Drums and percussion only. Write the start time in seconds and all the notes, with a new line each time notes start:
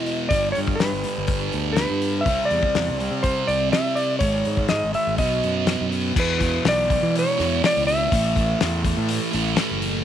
0.06 open hi-hat
0.31 kick, open hi-hat
0.55 open hi-hat
0.68 kick
0.80 snare, open hi-hat
1.04 open hi-hat
1.27 kick, open hi-hat
1.52 open hi-hat
1.76 snare, open hi-hat
2.02 open hi-hat
2.26 kick, open hi-hat
2.50 open hi-hat
2.63 kick
2.75 snare, open hi-hat
3.00 open hi-hat
3.24 kick, open hi-hat
3.48 open hi-hat
3.73 snare, open hi-hat
3.97 open hi-hat
4.20 kick, open hi-hat
4.45 open hi-hat
4.57 kick
4.68 snare, open hi-hat
4.94 open hi-hat
5.18 kick, open hi-hat
5.44 open hi-hat
5.67 snare, open hi-hat
5.92 open hi-hat
6.16 kick, crash
6.41 kick, open hi-hat
6.65 snare, open hi-hat
6.90 kick, open hi-hat
7.15 open hi-hat
7.40 snare, open hi-hat
7.64 snare, open hi-hat
7.88 open hi-hat
8.12 kick, open hi-hat
8.36 kick, open hi-hat
8.61 snare, open hi-hat
8.85 kick, open hi-hat
9.09 open hi-hat
9.33 open hi-hat
9.57 snare, open hi-hat
9.82 open hi-hat